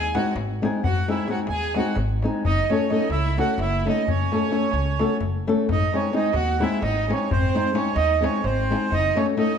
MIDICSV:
0, 0, Header, 1, 6, 480
1, 0, Start_track
1, 0, Tempo, 462250
1, 868, Time_signature, 7, 3, 24, 8
1, 9950, End_track
2, 0, Start_track
2, 0, Title_t, "Accordion"
2, 0, Program_c, 0, 21
2, 0, Note_on_c, 0, 80, 117
2, 151, Note_on_c, 0, 78, 81
2, 160, Note_off_c, 0, 80, 0
2, 352, Note_off_c, 0, 78, 0
2, 869, Note_on_c, 0, 78, 99
2, 1130, Note_off_c, 0, 78, 0
2, 1136, Note_on_c, 0, 76, 74
2, 1344, Note_off_c, 0, 76, 0
2, 1355, Note_on_c, 0, 78, 76
2, 1444, Note_off_c, 0, 78, 0
2, 1546, Note_on_c, 0, 80, 109
2, 1834, Note_on_c, 0, 78, 82
2, 1837, Note_off_c, 0, 80, 0
2, 2034, Note_off_c, 0, 78, 0
2, 2551, Note_on_c, 0, 75, 104
2, 2808, Note_on_c, 0, 73, 79
2, 2811, Note_off_c, 0, 75, 0
2, 3010, Note_on_c, 0, 75, 71
2, 3021, Note_off_c, 0, 73, 0
2, 3206, Note_off_c, 0, 75, 0
2, 3229, Note_on_c, 0, 76, 94
2, 3519, Note_off_c, 0, 76, 0
2, 3521, Note_on_c, 0, 78, 91
2, 3739, Note_off_c, 0, 78, 0
2, 3746, Note_on_c, 0, 76, 86
2, 4029, Note_off_c, 0, 76, 0
2, 4037, Note_on_c, 0, 75, 80
2, 4246, Note_on_c, 0, 73, 87
2, 4248, Note_off_c, 0, 75, 0
2, 5372, Note_off_c, 0, 73, 0
2, 5936, Note_on_c, 0, 75, 101
2, 6178, Note_on_c, 0, 73, 78
2, 6183, Note_off_c, 0, 75, 0
2, 6385, Note_off_c, 0, 73, 0
2, 6385, Note_on_c, 0, 75, 73
2, 6594, Note_off_c, 0, 75, 0
2, 6601, Note_on_c, 0, 78, 97
2, 6875, Note_on_c, 0, 76, 86
2, 6884, Note_off_c, 0, 78, 0
2, 7093, Note_on_c, 0, 75, 79
2, 7095, Note_off_c, 0, 76, 0
2, 7382, Note_off_c, 0, 75, 0
2, 7387, Note_on_c, 0, 73, 71
2, 7582, Note_off_c, 0, 73, 0
2, 7598, Note_on_c, 0, 72, 99
2, 8061, Note_on_c, 0, 73, 71
2, 8070, Note_off_c, 0, 72, 0
2, 8268, Note_on_c, 0, 75, 92
2, 8271, Note_off_c, 0, 73, 0
2, 8558, Note_off_c, 0, 75, 0
2, 8558, Note_on_c, 0, 73, 80
2, 8770, Note_on_c, 0, 72, 86
2, 8777, Note_off_c, 0, 73, 0
2, 9278, Note_on_c, 0, 75, 107
2, 9286, Note_off_c, 0, 72, 0
2, 9527, Note_on_c, 0, 73, 79
2, 9534, Note_off_c, 0, 75, 0
2, 9620, Note_off_c, 0, 73, 0
2, 9747, Note_on_c, 0, 75, 90
2, 9950, Note_off_c, 0, 75, 0
2, 9950, End_track
3, 0, Start_track
3, 0, Title_t, "Violin"
3, 0, Program_c, 1, 40
3, 0, Note_on_c, 1, 68, 90
3, 140, Note_off_c, 1, 68, 0
3, 178, Note_on_c, 1, 66, 59
3, 366, Note_off_c, 1, 66, 0
3, 889, Note_on_c, 1, 66, 75
3, 1115, Note_off_c, 1, 66, 0
3, 1143, Note_on_c, 1, 64, 62
3, 1328, Note_off_c, 1, 64, 0
3, 1363, Note_on_c, 1, 66, 76
3, 1450, Note_off_c, 1, 66, 0
3, 1573, Note_on_c, 1, 68, 93
3, 1823, Note_off_c, 1, 68, 0
3, 1854, Note_on_c, 1, 66, 65
3, 2044, Note_off_c, 1, 66, 0
3, 2558, Note_on_c, 1, 63, 90
3, 2789, Note_off_c, 1, 63, 0
3, 2818, Note_on_c, 1, 61, 64
3, 3006, Note_off_c, 1, 61, 0
3, 3019, Note_on_c, 1, 63, 68
3, 3211, Note_off_c, 1, 63, 0
3, 3233, Note_on_c, 1, 64, 91
3, 3493, Note_off_c, 1, 64, 0
3, 3527, Note_on_c, 1, 66, 64
3, 3721, Note_off_c, 1, 66, 0
3, 3750, Note_on_c, 1, 64, 83
3, 4004, Note_off_c, 1, 64, 0
3, 4028, Note_on_c, 1, 63, 67
3, 4223, Note_off_c, 1, 63, 0
3, 4234, Note_on_c, 1, 61, 75
3, 5366, Note_off_c, 1, 61, 0
3, 5934, Note_on_c, 1, 63, 77
3, 6158, Note_off_c, 1, 63, 0
3, 6172, Note_on_c, 1, 61, 60
3, 6362, Note_off_c, 1, 61, 0
3, 6384, Note_on_c, 1, 63, 75
3, 6573, Note_off_c, 1, 63, 0
3, 6578, Note_on_c, 1, 66, 79
3, 6844, Note_off_c, 1, 66, 0
3, 6859, Note_on_c, 1, 64, 62
3, 7065, Note_off_c, 1, 64, 0
3, 7080, Note_on_c, 1, 63, 83
3, 7347, Note_off_c, 1, 63, 0
3, 7356, Note_on_c, 1, 61, 65
3, 7566, Note_off_c, 1, 61, 0
3, 7573, Note_on_c, 1, 60, 80
3, 8011, Note_off_c, 1, 60, 0
3, 8039, Note_on_c, 1, 61, 71
3, 8236, Note_off_c, 1, 61, 0
3, 8243, Note_on_c, 1, 63, 85
3, 8516, Note_off_c, 1, 63, 0
3, 8532, Note_on_c, 1, 61, 58
3, 8741, Note_off_c, 1, 61, 0
3, 8751, Note_on_c, 1, 60, 75
3, 9226, Note_off_c, 1, 60, 0
3, 9258, Note_on_c, 1, 63, 82
3, 9499, Note_off_c, 1, 63, 0
3, 9516, Note_on_c, 1, 61, 63
3, 9611, Note_off_c, 1, 61, 0
3, 9734, Note_on_c, 1, 63, 74
3, 9922, Note_off_c, 1, 63, 0
3, 9950, End_track
4, 0, Start_track
4, 0, Title_t, "Nylon-string guitar"
4, 0, Program_c, 2, 24
4, 154, Note_on_c, 2, 56, 68
4, 161, Note_on_c, 2, 60, 59
4, 163, Note_on_c, 2, 63, 61
4, 173, Note_on_c, 2, 68, 75
4, 335, Note_off_c, 2, 56, 0
4, 337, Note_off_c, 2, 60, 0
4, 338, Note_off_c, 2, 63, 0
4, 344, Note_off_c, 2, 68, 0
4, 645, Note_on_c, 2, 56, 70
4, 652, Note_on_c, 2, 60, 61
4, 656, Note_on_c, 2, 63, 64
4, 671, Note_on_c, 2, 68, 81
4, 831, Note_off_c, 2, 56, 0
4, 835, Note_off_c, 2, 60, 0
4, 837, Note_off_c, 2, 63, 0
4, 845, Note_off_c, 2, 68, 0
4, 1122, Note_on_c, 2, 56, 67
4, 1127, Note_on_c, 2, 60, 50
4, 1133, Note_on_c, 2, 63, 55
4, 1137, Note_on_c, 2, 68, 65
4, 1299, Note_off_c, 2, 56, 0
4, 1300, Note_off_c, 2, 60, 0
4, 1304, Note_off_c, 2, 63, 0
4, 1306, Note_off_c, 2, 68, 0
4, 1330, Note_on_c, 2, 56, 61
4, 1337, Note_on_c, 2, 60, 47
4, 1341, Note_on_c, 2, 63, 51
4, 1350, Note_on_c, 2, 68, 62
4, 1507, Note_off_c, 2, 56, 0
4, 1511, Note_off_c, 2, 60, 0
4, 1513, Note_off_c, 2, 63, 0
4, 1518, Note_off_c, 2, 68, 0
4, 1822, Note_on_c, 2, 56, 71
4, 1828, Note_on_c, 2, 60, 64
4, 1836, Note_on_c, 2, 63, 67
4, 1845, Note_on_c, 2, 68, 74
4, 2009, Note_off_c, 2, 56, 0
4, 2012, Note_off_c, 2, 60, 0
4, 2015, Note_off_c, 2, 63, 0
4, 2020, Note_off_c, 2, 68, 0
4, 2321, Note_on_c, 2, 56, 71
4, 2332, Note_on_c, 2, 60, 54
4, 2336, Note_on_c, 2, 63, 65
4, 2340, Note_on_c, 2, 68, 79
4, 2510, Note_off_c, 2, 56, 0
4, 2516, Note_off_c, 2, 60, 0
4, 2517, Note_off_c, 2, 63, 0
4, 2520, Note_off_c, 2, 68, 0
4, 2801, Note_on_c, 2, 57, 60
4, 2807, Note_on_c, 2, 61, 59
4, 2816, Note_on_c, 2, 66, 53
4, 2825, Note_on_c, 2, 69, 69
4, 2978, Note_off_c, 2, 57, 0
4, 2981, Note_off_c, 2, 61, 0
4, 2986, Note_off_c, 2, 66, 0
4, 2990, Note_off_c, 2, 69, 0
4, 3019, Note_on_c, 2, 57, 55
4, 3026, Note_on_c, 2, 61, 56
4, 3026, Note_on_c, 2, 66, 55
4, 3035, Note_on_c, 2, 69, 57
4, 3193, Note_off_c, 2, 57, 0
4, 3194, Note_off_c, 2, 61, 0
4, 3196, Note_off_c, 2, 66, 0
4, 3200, Note_off_c, 2, 69, 0
4, 3502, Note_on_c, 2, 57, 72
4, 3506, Note_on_c, 2, 61, 64
4, 3522, Note_on_c, 2, 66, 63
4, 3525, Note_on_c, 2, 69, 76
4, 3689, Note_off_c, 2, 57, 0
4, 3691, Note_off_c, 2, 61, 0
4, 3699, Note_off_c, 2, 66, 0
4, 3700, Note_off_c, 2, 69, 0
4, 4000, Note_on_c, 2, 57, 54
4, 4006, Note_on_c, 2, 61, 45
4, 4011, Note_on_c, 2, 66, 46
4, 4015, Note_on_c, 2, 69, 53
4, 4190, Note_off_c, 2, 57, 0
4, 4193, Note_off_c, 2, 61, 0
4, 4194, Note_off_c, 2, 66, 0
4, 4197, Note_off_c, 2, 69, 0
4, 4483, Note_on_c, 2, 57, 61
4, 4492, Note_on_c, 2, 61, 51
4, 4495, Note_on_c, 2, 66, 55
4, 4502, Note_on_c, 2, 69, 68
4, 4659, Note_off_c, 2, 57, 0
4, 4664, Note_off_c, 2, 66, 0
4, 4665, Note_off_c, 2, 61, 0
4, 4669, Note_off_c, 2, 69, 0
4, 4676, Note_on_c, 2, 57, 56
4, 4684, Note_on_c, 2, 61, 49
4, 4696, Note_on_c, 2, 66, 54
4, 4700, Note_on_c, 2, 69, 62
4, 4861, Note_off_c, 2, 57, 0
4, 4865, Note_off_c, 2, 61, 0
4, 4871, Note_off_c, 2, 66, 0
4, 4872, Note_off_c, 2, 69, 0
4, 5186, Note_on_c, 2, 57, 75
4, 5188, Note_on_c, 2, 61, 65
4, 5195, Note_on_c, 2, 66, 71
4, 5200, Note_on_c, 2, 69, 78
4, 5371, Note_off_c, 2, 57, 0
4, 5371, Note_off_c, 2, 61, 0
4, 5375, Note_off_c, 2, 66, 0
4, 5378, Note_off_c, 2, 69, 0
4, 5683, Note_on_c, 2, 57, 70
4, 5688, Note_on_c, 2, 61, 62
4, 5694, Note_on_c, 2, 66, 55
4, 5699, Note_on_c, 2, 69, 83
4, 5871, Note_off_c, 2, 57, 0
4, 5873, Note_off_c, 2, 61, 0
4, 5877, Note_off_c, 2, 66, 0
4, 5879, Note_off_c, 2, 69, 0
4, 6166, Note_on_c, 2, 56, 58
4, 6171, Note_on_c, 2, 60, 55
4, 6177, Note_on_c, 2, 63, 61
4, 6183, Note_on_c, 2, 68, 66
4, 6341, Note_off_c, 2, 56, 0
4, 6343, Note_off_c, 2, 60, 0
4, 6346, Note_off_c, 2, 63, 0
4, 6349, Note_off_c, 2, 68, 0
4, 6365, Note_on_c, 2, 56, 62
4, 6370, Note_on_c, 2, 60, 50
4, 6375, Note_on_c, 2, 63, 54
4, 6379, Note_on_c, 2, 68, 65
4, 6545, Note_off_c, 2, 56, 0
4, 6548, Note_off_c, 2, 60, 0
4, 6550, Note_off_c, 2, 63, 0
4, 6552, Note_off_c, 2, 68, 0
4, 6852, Note_on_c, 2, 56, 77
4, 6855, Note_on_c, 2, 60, 66
4, 6862, Note_on_c, 2, 63, 58
4, 6870, Note_on_c, 2, 68, 78
4, 7044, Note_off_c, 2, 56, 0
4, 7045, Note_off_c, 2, 60, 0
4, 7048, Note_off_c, 2, 63, 0
4, 7052, Note_off_c, 2, 68, 0
4, 7355, Note_on_c, 2, 56, 55
4, 7367, Note_on_c, 2, 60, 57
4, 7371, Note_on_c, 2, 63, 51
4, 7377, Note_on_c, 2, 68, 68
4, 7547, Note_off_c, 2, 56, 0
4, 7553, Note_off_c, 2, 60, 0
4, 7554, Note_off_c, 2, 63, 0
4, 7557, Note_off_c, 2, 68, 0
4, 7836, Note_on_c, 2, 56, 61
4, 7839, Note_on_c, 2, 60, 64
4, 7847, Note_on_c, 2, 63, 57
4, 7848, Note_on_c, 2, 68, 66
4, 8016, Note_off_c, 2, 56, 0
4, 8016, Note_off_c, 2, 60, 0
4, 8021, Note_off_c, 2, 63, 0
4, 8021, Note_off_c, 2, 68, 0
4, 8032, Note_on_c, 2, 56, 52
4, 8043, Note_on_c, 2, 60, 56
4, 8050, Note_on_c, 2, 63, 48
4, 8053, Note_on_c, 2, 68, 60
4, 8218, Note_off_c, 2, 56, 0
4, 8224, Note_off_c, 2, 60, 0
4, 8226, Note_off_c, 2, 63, 0
4, 8229, Note_off_c, 2, 68, 0
4, 8521, Note_on_c, 2, 56, 69
4, 8528, Note_on_c, 2, 60, 60
4, 8534, Note_on_c, 2, 63, 67
4, 8540, Note_on_c, 2, 68, 72
4, 8718, Note_off_c, 2, 56, 0
4, 8722, Note_off_c, 2, 60, 0
4, 8724, Note_off_c, 2, 63, 0
4, 8727, Note_off_c, 2, 68, 0
4, 9038, Note_on_c, 2, 56, 59
4, 9044, Note_on_c, 2, 60, 55
4, 9054, Note_on_c, 2, 63, 56
4, 9056, Note_on_c, 2, 68, 69
4, 9228, Note_off_c, 2, 56, 0
4, 9231, Note_off_c, 2, 60, 0
4, 9237, Note_off_c, 2, 63, 0
4, 9237, Note_off_c, 2, 68, 0
4, 9505, Note_on_c, 2, 57, 65
4, 9513, Note_on_c, 2, 61, 63
4, 9516, Note_on_c, 2, 66, 62
4, 9521, Note_on_c, 2, 69, 65
4, 9691, Note_off_c, 2, 57, 0
4, 9693, Note_off_c, 2, 61, 0
4, 9696, Note_off_c, 2, 66, 0
4, 9698, Note_off_c, 2, 69, 0
4, 9729, Note_on_c, 2, 57, 61
4, 9730, Note_on_c, 2, 61, 52
4, 9739, Note_on_c, 2, 66, 52
4, 9745, Note_on_c, 2, 69, 68
4, 9906, Note_off_c, 2, 61, 0
4, 9908, Note_off_c, 2, 57, 0
4, 9912, Note_off_c, 2, 66, 0
4, 9915, Note_off_c, 2, 69, 0
4, 9950, End_track
5, 0, Start_track
5, 0, Title_t, "Upright bass"
5, 0, Program_c, 3, 32
5, 0, Note_on_c, 3, 39, 95
5, 159, Note_off_c, 3, 39, 0
5, 367, Note_on_c, 3, 32, 90
5, 668, Note_off_c, 3, 32, 0
5, 866, Note_on_c, 3, 32, 64
5, 1019, Note_off_c, 3, 32, 0
5, 1542, Note_on_c, 3, 39, 78
5, 1844, Note_off_c, 3, 39, 0
5, 2039, Note_on_c, 3, 32, 97
5, 2343, Note_off_c, 3, 32, 0
5, 2544, Note_on_c, 3, 30, 71
5, 2698, Note_off_c, 3, 30, 0
5, 3215, Note_on_c, 3, 37, 88
5, 3519, Note_off_c, 3, 37, 0
5, 3715, Note_on_c, 3, 30, 96
5, 4021, Note_off_c, 3, 30, 0
5, 4226, Note_on_c, 3, 30, 69
5, 4379, Note_off_c, 3, 30, 0
5, 4908, Note_on_c, 3, 37, 87
5, 5208, Note_off_c, 3, 37, 0
5, 5409, Note_on_c, 3, 30, 84
5, 5710, Note_off_c, 3, 30, 0
5, 5906, Note_on_c, 3, 32, 87
5, 6059, Note_off_c, 3, 32, 0
5, 6583, Note_on_c, 3, 39, 88
5, 6885, Note_off_c, 3, 39, 0
5, 7083, Note_on_c, 3, 32, 90
5, 7386, Note_off_c, 3, 32, 0
5, 7592, Note_on_c, 3, 32, 81
5, 7743, Note_off_c, 3, 32, 0
5, 8263, Note_on_c, 3, 39, 96
5, 8564, Note_off_c, 3, 39, 0
5, 8765, Note_on_c, 3, 32, 90
5, 9067, Note_off_c, 3, 32, 0
5, 9263, Note_on_c, 3, 30, 73
5, 9417, Note_off_c, 3, 30, 0
5, 9950, End_track
6, 0, Start_track
6, 0, Title_t, "Darbuka"
6, 13, Note_on_c, 9, 63, 23
6, 117, Note_off_c, 9, 63, 0
6, 154, Note_on_c, 9, 63, 78
6, 258, Note_off_c, 9, 63, 0
6, 373, Note_on_c, 9, 63, 67
6, 477, Note_off_c, 9, 63, 0
6, 512, Note_on_c, 9, 63, 22
6, 616, Note_off_c, 9, 63, 0
6, 654, Note_on_c, 9, 63, 65
6, 758, Note_off_c, 9, 63, 0
6, 759, Note_on_c, 9, 63, 24
6, 863, Note_off_c, 9, 63, 0
6, 872, Note_on_c, 9, 64, 87
6, 976, Note_off_c, 9, 64, 0
6, 1128, Note_on_c, 9, 63, 51
6, 1228, Note_off_c, 9, 63, 0
6, 1228, Note_on_c, 9, 63, 23
6, 1324, Note_off_c, 9, 63, 0
6, 1324, Note_on_c, 9, 63, 54
6, 1428, Note_off_c, 9, 63, 0
6, 1428, Note_on_c, 9, 63, 24
6, 1526, Note_off_c, 9, 63, 0
6, 1526, Note_on_c, 9, 63, 62
6, 1630, Note_off_c, 9, 63, 0
6, 1673, Note_on_c, 9, 63, 23
6, 1777, Note_off_c, 9, 63, 0
6, 1810, Note_on_c, 9, 63, 68
6, 1914, Note_off_c, 9, 63, 0
6, 1933, Note_on_c, 9, 63, 22
6, 2030, Note_off_c, 9, 63, 0
6, 2030, Note_on_c, 9, 63, 59
6, 2134, Note_off_c, 9, 63, 0
6, 2173, Note_on_c, 9, 63, 22
6, 2277, Note_off_c, 9, 63, 0
6, 2309, Note_on_c, 9, 63, 57
6, 2413, Note_off_c, 9, 63, 0
6, 2431, Note_on_c, 9, 63, 24
6, 2535, Note_off_c, 9, 63, 0
6, 2542, Note_on_c, 9, 64, 75
6, 2646, Note_off_c, 9, 64, 0
6, 2802, Note_on_c, 9, 63, 59
6, 2906, Note_off_c, 9, 63, 0
6, 2906, Note_on_c, 9, 63, 23
6, 3010, Note_off_c, 9, 63, 0
6, 3014, Note_on_c, 9, 63, 51
6, 3118, Note_off_c, 9, 63, 0
6, 3124, Note_on_c, 9, 63, 23
6, 3221, Note_off_c, 9, 63, 0
6, 3221, Note_on_c, 9, 63, 60
6, 3325, Note_off_c, 9, 63, 0
6, 3514, Note_on_c, 9, 63, 67
6, 3618, Note_off_c, 9, 63, 0
6, 3729, Note_on_c, 9, 63, 62
6, 3832, Note_off_c, 9, 63, 0
6, 4018, Note_on_c, 9, 63, 57
6, 4122, Note_off_c, 9, 63, 0
6, 4129, Note_on_c, 9, 63, 26
6, 4233, Note_off_c, 9, 63, 0
6, 4239, Note_on_c, 9, 64, 78
6, 4343, Note_off_c, 9, 64, 0
6, 4360, Note_on_c, 9, 63, 25
6, 4464, Note_off_c, 9, 63, 0
6, 4484, Note_on_c, 9, 63, 57
6, 4588, Note_off_c, 9, 63, 0
6, 4591, Note_on_c, 9, 63, 22
6, 4693, Note_off_c, 9, 63, 0
6, 4693, Note_on_c, 9, 63, 53
6, 4797, Note_off_c, 9, 63, 0
6, 4805, Note_on_c, 9, 63, 21
6, 4895, Note_off_c, 9, 63, 0
6, 4895, Note_on_c, 9, 63, 55
6, 4999, Note_off_c, 9, 63, 0
6, 5048, Note_on_c, 9, 63, 19
6, 5152, Note_off_c, 9, 63, 0
6, 5185, Note_on_c, 9, 63, 63
6, 5289, Note_off_c, 9, 63, 0
6, 5405, Note_on_c, 9, 63, 52
6, 5405, Note_on_c, 9, 64, 55
6, 5509, Note_off_c, 9, 63, 0
6, 5509, Note_off_c, 9, 64, 0
6, 5688, Note_on_c, 9, 63, 57
6, 5792, Note_off_c, 9, 63, 0
6, 5799, Note_on_c, 9, 63, 22
6, 5902, Note_off_c, 9, 63, 0
6, 5909, Note_on_c, 9, 64, 84
6, 6013, Note_off_c, 9, 64, 0
6, 6164, Note_on_c, 9, 63, 56
6, 6268, Note_off_c, 9, 63, 0
6, 6272, Note_on_c, 9, 63, 23
6, 6368, Note_off_c, 9, 63, 0
6, 6368, Note_on_c, 9, 63, 53
6, 6466, Note_off_c, 9, 63, 0
6, 6466, Note_on_c, 9, 63, 25
6, 6570, Note_off_c, 9, 63, 0
6, 6575, Note_on_c, 9, 63, 60
6, 6679, Note_off_c, 9, 63, 0
6, 6862, Note_on_c, 9, 63, 63
6, 6965, Note_off_c, 9, 63, 0
6, 7087, Note_on_c, 9, 63, 70
6, 7191, Note_off_c, 9, 63, 0
6, 7378, Note_on_c, 9, 63, 61
6, 7482, Note_off_c, 9, 63, 0
6, 7490, Note_on_c, 9, 63, 27
6, 7594, Note_off_c, 9, 63, 0
6, 7594, Note_on_c, 9, 64, 84
6, 7697, Note_off_c, 9, 64, 0
6, 7843, Note_on_c, 9, 63, 59
6, 7947, Note_off_c, 9, 63, 0
6, 7955, Note_on_c, 9, 63, 25
6, 8049, Note_off_c, 9, 63, 0
6, 8049, Note_on_c, 9, 63, 66
6, 8153, Note_off_c, 9, 63, 0
6, 8165, Note_on_c, 9, 63, 25
6, 8265, Note_off_c, 9, 63, 0
6, 8265, Note_on_c, 9, 63, 65
6, 8368, Note_off_c, 9, 63, 0
6, 8556, Note_on_c, 9, 63, 70
6, 8659, Note_off_c, 9, 63, 0
6, 8663, Note_on_c, 9, 63, 20
6, 8766, Note_off_c, 9, 63, 0
6, 8766, Note_on_c, 9, 63, 59
6, 8870, Note_off_c, 9, 63, 0
6, 8915, Note_on_c, 9, 63, 22
6, 9019, Note_off_c, 9, 63, 0
6, 9055, Note_on_c, 9, 63, 66
6, 9155, Note_off_c, 9, 63, 0
6, 9155, Note_on_c, 9, 63, 28
6, 9259, Note_off_c, 9, 63, 0
6, 9263, Note_on_c, 9, 64, 71
6, 9367, Note_off_c, 9, 64, 0
6, 9521, Note_on_c, 9, 63, 70
6, 9625, Note_off_c, 9, 63, 0
6, 9735, Note_on_c, 9, 63, 58
6, 9839, Note_off_c, 9, 63, 0
6, 9839, Note_on_c, 9, 63, 26
6, 9942, Note_off_c, 9, 63, 0
6, 9950, End_track
0, 0, End_of_file